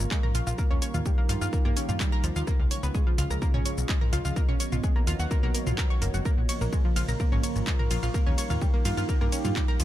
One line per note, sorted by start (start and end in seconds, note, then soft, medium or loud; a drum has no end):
0.00 0.57 C#3 medium
0.00 0.57 F3 medium
0.00 2.44 A#3 medium
0.00 0.57 F4 medium
0.00 3.23 A#4 medium
0.00 5.12 F5 medium
0.00 1.34 A#5 medium
0.00 1.34 C#6 medium
0.11 0.17 G#3 medium
0.11 0.17 G#4 medium
0.11 kick loud
0.11 clap loud
0.11 shaker medium
0.23 0.28 A#4 medium
0.23 0.28 A#5 medium
0.23 mid tom medium
0.35 0.42 A#1 loud
0.35 0.44 F4 loud
0.35 0.44 F5 medium
0.35 open hi-hat loud
0.35 shaker medium
0.47 0.54 A#1 medium
0.47 0.55 F4 loud
0.47 0.55 F5 medium
0.47 shaker medium
0.58 2.45 D#3 medium
0.58 2.45 G3 medium
0.58 0.64 A#3 loud
0.58 3.23 D#4 medium
0.58 2.45 G4 medium
0.58 0.64 A#4 medium
0.58 kick loud
0.58 shaker medium
0.71 0.77 D#2 medium
0.71 0.76 C#4 loud
0.71 0.76 C#5 medium
0.82 0.87 C#5 medium
0.82 0.87 C#6 medium
0.82 cross-stick medium
0.82 open hi-hat loud
0.82 shaker medium
0.94 1.01 D#2 medium
0.94 0.99 F4 medium
0.94 0.99 F5 medium
0.94 mid tom medium
0.94 shaker medium
1.06 1.11 G3 medium
1.06 1.11 G4 medium
1.06 2.47 G5 medium
1.06 kick loud
1.06 shaker medium
1.18 1.26 A#3 medium
1.18 1.26 A#4 medium
1.29 1.37 G2 loud
1.29 1.38 F4 loud
1.29 1.38 F5 medium
1.29 open hi-hat loud
1.29 shaker medium
1.41 1.48 G2 medium
1.41 1.50 F4 loud
1.41 1.50 F5 medium
1.41 shaker medium
1.53 1.62 A#3 loud
1.53 1.62 A#4 medium
1.53 kick loud
1.53 shaker medium
1.65 1.72 G2 medium
1.65 1.73 A#3 loud
1.65 1.73 A#4 medium
1.65 cross-stick medium
1.76 1.85 C#4 medium
1.76 1.85 C#5 medium
1.76 open hi-hat loud
1.76 shaker medium
1.89 1.96 G2 medium
1.89 1.94 F4 medium
1.89 1.94 F5 medium
1.89 mid tom medium
1.89 shaker medium
2.00 2.06 G3 medium
2.00 2.06 G4 medium
2.00 kick loud
2.00 clap loud
2.00 shaker medium
2.12 2.21 A#4 loud
2.12 2.21 A#5 medium
2.24 2.31 D#2 loud
2.24 2.33 F3 medium
2.24 2.33 F4 medium
2.24 open hi-hat loud
2.24 shaker medium
2.36 2.43 D#2 medium
2.36 2.44 F4 medium
2.36 2.44 F5 medium
2.36 shaker medium
2.47 4.35 C#3 medium
2.47 4.35 F3 medium
2.47 4.34 G#3 medium
2.47 2.53 A#3 loud
2.47 5.07 C#4 medium
2.47 4.35 F4 medium
2.47 2.53 A#4 medium
2.47 kick loud
2.47 cross-stick medium
2.47 shaker medium
2.60 2.66 C#2 medium
2.71 2.76 C#5 medium
2.71 2.76 C#6 medium
2.71 open hi-hat loud
2.71 shaker medium
2.83 2.90 C#2 medium
2.83 2.92 B3 medium
2.83 4.95 G#4 medium
2.83 2.92 B4 medium
2.83 shaker medium
2.94 3.00 G#3 medium
2.94 3.00 G#4 medium
2.94 7.01 D#5 medium
2.94 kick loud
2.94 shaker medium
3.07 3.12 F3 medium
3.07 3.12 F4 medium
3.18 3.26 C#2 loud
3.18 3.27 F4 loud
3.18 3.27 F5 medium
3.18 open hi-hat loud
3.18 shaker medium
3.30 3.37 C#2 medium
3.30 3.39 A#4 medium
3.30 3.39 A#5 medium
3.30 cross-stick medium
3.30 shaker medium
3.42 3.47 A#3 loud
3.42 3.47 A#4 medium
3.42 kick loud
3.42 shaker medium
3.54 3.61 B1 medium
3.54 3.59 C#4 loud
3.54 3.59 C#5 medium
3.54 mid tom medium
3.65 3.71 C#5 medium
3.65 3.71 C#6 medium
3.65 open hi-hat loud
3.65 shaker medium
3.78 3.85 B1 medium
3.78 shaker medium
3.89 3.94 G#3 medium
3.89 3.95 G#4 medium
3.89 kick loud
3.89 clap loud
3.89 shaker medium
4.01 4.06 A#4 medium
4.01 4.06 A#5 medium
4.01 mid tom medium
4.13 4.20 C#2 loud
4.13 4.22 F4 loud
4.13 4.22 F5 medium
4.13 cross-stick medium
4.13 open hi-hat loud
4.13 shaker medium
4.25 4.32 C#2 medium
4.25 4.33 F4 loud
4.25 4.33 F5 medium
4.25 shaker medium
4.36 6.23 D#3 medium
4.36 6.23 F#3 medium
4.36 4.42 A#3 loud
4.36 6.23 B3 medium
4.36 6.25 B3 medium
4.36 6.23 F#4 medium
4.36 4.42 A#4 medium
4.36 kick loud
4.36 shaker medium
4.49 4.55 B1 medium
4.49 4.54 C#4 loud
4.49 4.54 C#5 medium
4.49 7.01 C#5 medium
4.60 4.65 C#5 medium
4.60 4.65 C#6 medium
4.60 open hi-hat loud
4.60 shaker medium
4.72 4.79 B1 medium
4.72 4.77 F4 medium
4.72 6.25 F#4 medium
4.72 4.77 F5 medium
4.72 mid tom medium
4.72 shaker medium
4.84 4.89 G#3 medium
4.84 4.89 G#4 medium
4.84 kick loud
4.84 shaker medium
4.96 5.04 A#3 medium
4.96 5.04 A#4 medium
4.96 cross-stick medium
5.07 5.15 D#2 loud
5.07 5.16 F4 loud
5.07 5.16 F5 medium
5.07 open hi-hat loud
5.07 shaker medium
5.19 5.26 D#2 medium
5.19 5.28 F#4 loud
5.19 5.28 F#5 medium
5.19 shaker medium
5.31 5.40 A#3 loud
5.31 5.40 A#4 medium
5.31 kick loud
5.31 shaker medium
5.43 5.50 B1 medium
5.43 5.51 A#3 loud
5.43 5.51 A#4 medium
5.54 5.63 A#3 medium
5.54 5.63 A#4 medium
5.54 open hi-hat loud
5.54 shaker medium
5.67 5.74 B1 medium
5.67 5.78 F4 medium
5.67 5.78 F5 medium
5.67 mid tom medium
5.67 shaker medium
5.78 5.87 A#4 medium
5.78 5.87 A#5 medium
5.78 kick loud
5.78 cross-stick medium
5.78 clap loud
5.78 shaker medium
5.90 6.01 C#5 medium
5.90 6.01 C#6 medium
6.02 6.09 F#1 loud
6.02 6.11 A#3 medium
6.02 6.11 A#4 medium
6.02 open hi-hat loud
6.02 shaker medium
6.14 6.21 F#1 medium
6.14 6.19 F#4 medium
6.14 6.19 F#5 medium
6.14 shaker medium
6.25 8.12 C#3 medium
6.25 8.12 F3 medium
6.25 6.31 A#3 loud
6.25 9.84 A#3 medium
6.25 8.12 F4 medium
6.25 6.31 A#4 medium
6.25 9.84 A#4 medium
6.25 kick loud
6.25 shaker medium
6.36 6.44 A#1 medium
6.36 9.84 F5 medium
6.36 8.90 A#5 medium
6.49 6.54 C#5 medium
6.49 6.54 C#6 medium
6.49 open hi-hat loud
6.49 ride medium
6.49 shaker medium
6.61 6.68 A#1 medium
6.61 6.70 A#3 medium
6.61 6.70 A#4 medium
6.61 shaker medium
6.73 6.78 G#3 medium
6.73 6.78 G#4 medium
6.73 kick loud
6.73 cross-stick medium
6.73 shaker medium
6.85 6.90 F3 medium
6.85 6.90 F4 medium
6.96 7.04 A#1 loud
6.96 7.05 F4 loud
6.96 7.05 F5 medium
6.96 open hi-hat loud
6.96 ride medium
6.96 shaker medium
7.08 7.15 A#1 medium
7.08 7.17 A#4 medium
7.08 7.17 A#5 medium
7.08 8.90 C#6 medium
7.08 shaker medium
7.20 7.25 A#3 loud
7.20 7.25 A#4 medium
7.20 kick loud
7.20 shaker medium
7.32 7.39 G#1 medium
7.32 7.37 C#4 loud
7.32 7.37 C#5 medium
7.32 mid tom medium
7.43 7.49 C#5 medium
7.43 7.49 C#6 medium
7.43 open hi-hat loud
7.43 ride medium
7.43 shaker medium
7.56 7.63 G#1 medium
7.56 cross-stick medium
7.56 shaker medium
7.67 7.72 G#3 medium
7.67 7.72 G#4 medium
7.67 kick loud
7.67 clap loud
7.67 shaker medium
7.79 7.84 A#4 medium
7.79 7.84 A#5 medium
7.79 mid tom loud
7.91 7.98 A#1 loud
7.91 8.00 F4 loud
7.91 8.00 F5 medium
7.91 open hi-hat loud
7.91 ride medium
7.91 shaker medium
8.03 8.10 A#1 medium
8.03 8.11 F4 loud
8.03 8.11 F5 medium
8.03 shaker medium
8.14 9.84 D#3 medium
8.14 9.84 G3 medium
8.14 8.20 A#3 loud
8.14 9.84 D#4 medium
8.14 9.84 G4 medium
8.14 8.20 A#4 medium
8.14 kick loud
8.14 shaker medium
8.26 8.33 D#2 medium
8.26 8.32 C#4 loud
8.26 8.32 C#5 medium
8.38 8.43 C#5 medium
8.38 8.43 C#6 medium
8.38 cross-stick medium
8.38 open hi-hat loud
8.38 ride medium
8.38 shaker medium
8.50 8.57 D#2 medium
8.50 8.55 F4 medium
8.50 8.55 F5 medium
8.50 mid tom medium
8.50 shaker medium
8.61 8.67 G3 medium
8.61 8.67 G4 medium
8.61 kick loud
8.61 shaker medium
8.74 8.82 A#3 medium
8.74 8.82 A#4 medium
8.85 8.93 G2 loud
8.85 8.94 F4 loud
8.85 8.94 F5 medium
8.85 9.84 G5 medium
8.85 open hi-hat loud
8.85 ride medium
8.85 shaker medium
8.97 9.04 G2 medium
8.97 9.06 F4 loud
8.97 9.06 F5 medium
8.97 shaker medium
9.09 9.18 A#3 loud
9.09 9.18 A#4 medium
9.09 kick loud
9.09 shaker medium
9.21 9.28 G2 medium
9.21 9.29 A#3 loud
9.21 9.29 A#4 medium
9.21 cross-stick medium
9.32 9.41 C#4 medium
9.32 9.41 C#5 medium
9.32 open hi-hat loud
9.32 ride medium
9.32 shaker medium
9.45 9.52 G2 medium
9.45 9.50 F4 medium
9.45 9.50 F5 medium
9.45 mid tom medium
9.45 shaker medium
9.56 9.61 G3 medium
9.56 9.61 G4 medium
9.56 kick loud
9.56 clap loud
9.56 shaker medium
9.68 9.77 A#4 loud
9.68 9.77 A#5 medium
9.80 9.84 D#2 medium
9.80 9.84 F3 medium
9.80 9.84 F4 medium
9.80 open hi-hat loud
9.80 ride medium
9.80 shaker medium